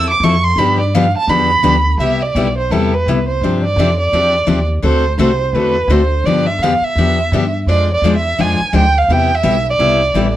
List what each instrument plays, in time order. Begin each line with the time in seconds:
Already playing: upright bass E2
0.10 violin D6
0.20 upright bass F2, steel-string acoustic guitar F3 C4 E4 A4, violin C#6
0.43 violin C6
0.56 upright bass G2, steel-string acoustic guitar D3 F3 B3 D4 G4, violin B5
0.80 violin D5
0.94 steel-string acoustic guitar D3 F3 B3 D4 G4, violin F5
1.17 violin A5
1.28 upright bass E2, steel-string acoustic guitar D3 F3 B3 D4 G4, violin B5
1.63 upright bass D2, steel-string acoustic guitar D3 F3 B3 D4 G4
1.98 upright bass C2, steel-string acoustic guitar C3 G3 B3 E4 G4, violin E5
2.22 violin D5
2.35 upright bass B1, steel-string acoustic guitar C3 G3 B3 E4 G4
2.57 violin C5
2.70 upright bass E2, steel-string acoustic guitar C3 G3 B3 E4 G4, violin A4
2.93 violin B4
3.06 upright bass C2, steel-string acoustic guitar C3 G3 B3 E4 G4
3.28 violin C5
3.41 upright bass G2, steel-string acoustic guitar C3 F3 C4 D4 G4
3.64 violin D5
3.76 upright bass F2, steel-string acoustic guitar C3 F3 C4 D4 G4
3.99 violin D5
4.12 upright bass E2, steel-string acoustic guitar C3 F3 C4 D4 G4
4.46 upright bass D#2, steel-string acoustic guitar C3 F3 C4 D4 G4
4.82 upright bass D2, steel-string acoustic guitar D3 A3 C4 F#4 A4, violin C5
5.18 upright bass C2, steel-string acoustic guitar D3 A3 C4 F#4 A4, violin C5
5.53 upright bass E2, steel-string acoustic guitar D3 A3 C4 F#4 A4, violin B4
5.88 upright bass D2, steel-string acoustic guitar D3 A3 C4 F#4 A4, violin C5
6.24 upright bass G2, steel-string acoustic guitar D3 F3 B3 D4 G4, violin D5
6.46 violin E5
6.58 upright bass F2, violin F5
6.63 steel-string acoustic guitar D3 F3 B3 D4 G4
6.81 violin E5, muted upright bass stroke
6.96 upright bass E2, steel-string acoustic guitar D3 F3 B3 D4 G4
7.32 upright bass G2, steel-string acoustic guitar D3 F3 B3 D4 G4
7.66 upright bass F2, steel-string acoustic guitar F3 G#3 D4 F4 C5, violin D5
7.94 violin D5
8.02 upright bass E2, steel-string acoustic guitar F3 G#3 D4 F4 C5
8.16 violin E5
8.38 upright bass F2, steel-string acoustic guitar F3 G#3 D4 F4 C5, violin G#5
8.60 muted upright bass stroke
8.73 upright bass D2, steel-string acoustic guitar F3 G#3 D4 F4 C5, violin G5
8.98 violin F5
9.08 upright bass E2, steel-string acoustic guitar C3 G3 B3 E4 G4, violin G5
9.35 violin E5
9.43 upright bass B1, steel-string acoustic guitar C3 G3 B3 E4 G4
9.70 violin D5
9.79 upright bass C2, steel-string acoustic guitar C3 G3 B3 E4 G4
10.14 upright bass A1, steel-string acoustic guitar C3 G3 B3 E4 G4